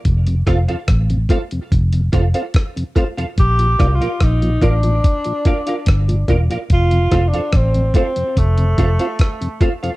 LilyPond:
<<
  \new Staff \with { instrumentName = "Clean electric guitar" } { \time 4/4 \key f \mixolydian \tempo 4 = 72 r8 <f' a' c'' f''>16 <f' a' c'' f''>16 r8 <f' a' c'' f''>16 r8. <f' a' c'' f''>16 <f' a' c'' f''>16 r8 <f' a' c'' f''>16 <f' a' c'' f''>16 | r8 <f' bes' d'' f''>16 <f' bes' d'' f''>16 r8 <f' bes' d'' f''>16 r8. <f' bes' d'' f''>16 <f' bes' d'' f''>16 r8 <f' bes' d'' f''>16 <f' bes' d'' f''>16 | r8 <f' a' c'' f''>16 <f' a' c'' f''>16 r8 <f' a' c'' f''>16 r8. <f' a' c'' f''>16 <f' a' c'' f''>16 r8 <f' a' c'' f''>16 <f' a' c'' f''>16 | }
  \new Staff \with { instrumentName = "Tenor saxophone" } { \time 4/4 \key f \mixolydian r1 | \tuplet 3/2 { g'4 f'8 } ees'8 d'2 r8 | \tuplet 3/2 { f'4 d'8 } c'8 c'8 a4. r8 | }
  \new Staff \with { instrumentName = "Tonewheel organ" } { \clef bass \time 4/4 \key f \mixolydian r16 <f, c>16 <a c' f'>16 <f, c>16 r16 <f, c>16 <a c' f'>16 <f, c>16 r16 <f, c>16 <a c' f'>16 <c' f'>16 r16 <f, c>16 <a c' f'>16 <f, c>16 | r16 <bes, f>16 <bes d' f'>16 <bes, f>16 r16 <bes, f>16 <bes d' f'>16 <bes, f>16 r16 <bes, f>16 <bes d' f'>16 <d' f'>16 r16 <bes, f>16 <bes d' f'>16 <bes, f>16 | r16 <f, c>16 <a c' f'>16 <f, c>16 r16 <f, c>16 <a c' f'>16 <f, c>16 r16 <f, c>16 <a c' f'>16 <c' f'>16 r16 <f, c>16 <a c' f'>16 <f, c>16 | }
  \new Staff \with { instrumentName = "Fingered electric bass" } { \clef bass \time 4/4 \key f \mixolydian f,,8 f,,16 r16 a,,8 r8 f,,8 f,,16 r4 r16 | bes,,8 c,16 r16 bes,,8 a,,8 r4 g,,8 e,,16 r16 | f,,8 f,,16 r16 a,,8 r8 f,,8 f,,16 r4 r16 | }
  \new DrumStaff \with { instrumentName = "Drums" } \drummode { \time 4/4 <hh bd>16 hh16 <hh bd ss>16 hh16 <hh bd ss>16 hh16 <hh bd>16 hh16 <hh bd>16 hh16 <hh bd>16 hh16 <hh bd ss>16 hh16 <hh bd>16 hh16 | <hh bd>16 hh16 <hh bd ss>16 hh16 <hh bd ss>16 hh16 <hh bd>16 hh16 <hh bd>16 hh16 <hh bd>16 hh16 <hh bd ss>16 hh16 <hh bd>16 hh16 | <hh bd>16 hh16 <hh bd ss>16 hh16 <hh bd ss>16 hh16 <hh bd>16 hh16 <hh bd>16 hh16 <hh bd>16 hh16 <hh bd ss>16 hh16 <hh bd>16 hh16 | }
>>